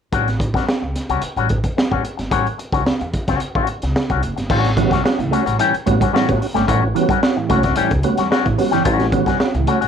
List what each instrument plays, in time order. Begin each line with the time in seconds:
0.12 upright bass A1, clean electric guitar G3 C#4 F#4, kick, closed hi-hat
0.28 snare, closed hi-hat
0.39 muted clean electric guitar stroke, kick, closed hi-hat
0.54 clean electric guitar G3 C#4 F#4, kick, snare, closed hi-hat
0.66 muted clean electric guitar stroke, snare
0.82 upright bass C#2, muted clean electric guitar stroke
0.96 snare, closed hi-hat
1.09 upright bass C#2, clean electric guitar G3 C#4 F#4, closed hi-hat
1.22 muted upright bass stroke, muted clean electric guitar stroke, closed hi-hat
1.36 upright bass A1, clean electric guitar G3 C#4 F#4, closed hi-hat
1.49 muted clean electric guitar stroke, kick, closed hi-hat
1.64 muted clean electric guitar stroke, kick, closed hi-hat
1.77 muted clean electric guitar stroke, snare
1.91 upright bass A2, clean electric guitar G3 C#4 F#4, kick
2.04 muted clean electric guitar stroke, closed hi-hat
2.17 upright bass G1, muted clean electric guitar stroke, snare, closed hi-hat
2.31 upright bass A1, clean electric guitar G3 C#4 F#4, kick, closed hi-hat
2.47 closed hi-hat
2.58 muted clean electric guitar stroke, closed hi-hat
2.72 upright bass C#2, clean electric guitar G3 C#4 F#4, kick, closed hi-hat
2.85 muted clean electric guitar stroke, muted upright bass stroke, snare
3.01 upright bass E2, muted clean electric guitar stroke, closed hi-hat
3.13 kick, closed hi-hat
3.28 upright bass C#2, clean electric guitar G3 C#4 F#4, kick, snare, closed hi-hat
3.40 muted upright bass stroke, closed hi-hat
3.55 upright bass A1, clean electric guitar G3 C#4 F#4, kick
3.67 closed hi-hat
3.82 upright bass C#2, muted clean electric guitar stroke, snare, closed hi-hat
3.95 muted clean electric guitar stroke, snare
4.10 upright bass C2, clean electric guitar G3 C#4 F#4, kick, closed hi-hat
4.23 upright bass F#1, muted clean electric guitar stroke, closed hi-hat
4.36 upright bass G1, muted clean electric guitar stroke, snare, closed hi-hat
4.50 upright bass A1, tonewheel organ A2 E3, clean electric guitar G3 C#4 F#4, kick, crash
4.64 tonewheel organ C#4 F#4, muted clean electric guitar stroke, snare, closed hi-hat
4.77 clean electric guitar E3, tonewheel organ G3 B3 C#4 F#4, muted clean electric guitar stroke, kick, closed hi-hat
4.91 upright bass C2, clean electric guitar G3 C#4 F#4, kick, snare, closed hi-hat
5.04 tonewheel organ C#4 F#4, muted clean electric guitar stroke, snare
5.19 upright bass C#2, tonewheel organ A2 E3, muted clean electric guitar stroke, closed hi-hat
5.31 clean electric guitar G3 A3 C#4 F#4, tonewheel organ C#4 F#4, closed hi-hat
5.46 upright bass A1, clean electric guitar G3 C#4 F#4, closed hi-hat
5.59 tonewheel organ A2 E3, clean electric guitar G3 C#4 G4, muted clean electric guitar stroke, closed hi-hat
5.74 muted upright bass stroke, closed hi-hat
5.86 upright bass A1, tonewheel organ G3 B3 C#4 F#4, clean electric guitar A3, muted clean electric guitar stroke, kick, closed hi-hat
6.00 clean electric guitar G3 C#4 F#4, tonewheel organ C#4 F#4, kick, closed hi-hat
6.13 tonewheel organ A2 E3, clean electric guitar G3 C#4 F#4, snare
6.29 upright bass A2, tonewheel organ G3 B3 C#4 F#4, kick, closed hi-hat
6.41 tonewheel organ C#4 F#4, muted clean electric guitar stroke, open hi-hat
6.54 upright bass G1, clean electric guitar G3 A3 C#4 G4, snare, closed hi-hat
6.67 upright bass A1, tonewheel organ A2 E3, clean electric guitar G3 C#4 F#4, kick, closed hi-hat
6.82 tonewheel organ C#4 F#4, muted clean electric guitar stroke
6.95 clean electric guitar E3, tonewheel organ G3 B3 C#4 F#4, muted clean electric guitar stroke, closed hi-hat
7.09 clean electric guitar G3 C#4 F#4, muted upright bass stroke, kick, closed hi-hat
7.23 tonewheel organ C#4 F#4, muted clean electric guitar stroke, snare
7.37 tonewheel organ A2 E3, muted clean electric guitar stroke
7.49 upright bass C2, clean electric guitar G3 A3 C#4 F#4, tonewheel organ C#4 F#4, kick, closed hi-hat
7.63 clean electric guitar G3 C#4 F#4, kick, snare, closed hi-hat
7.76 tonewheel organ A2 E3, clean electric guitar G3 C#4 G4, muted upright bass stroke, muted clean electric guitar stroke, closed hi-hat
7.91 upright bass C#2, kick, closed hi-hat
8.03 tonewheel organ G3 B3 C#4 F#4, clean electric guitar A3, muted clean electric guitar stroke, closed hi-hat
8.18 upright bass E2, clean electric guitar G3 C#4 F#4, tonewheel organ C#4 F#4, snare, closed hi-hat
8.31 clean electric guitar G3 C#4 F#4, tonewheel organ C#4 F#4, muted clean electric guitar stroke, snare
8.45 tonewheel organ A2 E3, upright bass A2, kick, closed hi-hat
8.58 tonewheel organ G3 B3 C#4 F#4, clean electric guitar G3, muted clean electric guitar stroke, open hi-hat
8.71 upright bass G1, clean electric guitar E3 G3 C#4 G4, snare, closed hi-hat
8.84 upright bass A1, tonewheel organ A2 E3, clean electric guitar G3 C#4 F#4, kick, closed hi-hat
9.00 tonewheel organ C#4 F#4, muted clean electric guitar stroke, snare, closed hi-hat
9.12 clean electric guitar E3, tonewheel organ G3 B3 C#4 F#4, muted clean electric guitar stroke, kick, closed hi-hat
9.26 upright bass C2, clean electric guitar G3 C#4 F#4, kick, snare, closed hi-hat
9.39 tonewheel organ C#4 F#4, muted clean electric guitar stroke, snare
9.54 upright bass C#2, tonewheel organ A2 E3, muted clean electric guitar stroke, closed hi-hat
9.67 clean electric guitar G3 A3 C#4 F#4, tonewheel organ C#4 F#4, closed hi-hat
9.81 upright bass A1, clean electric guitar G3 C#4 F#4, closed hi-hat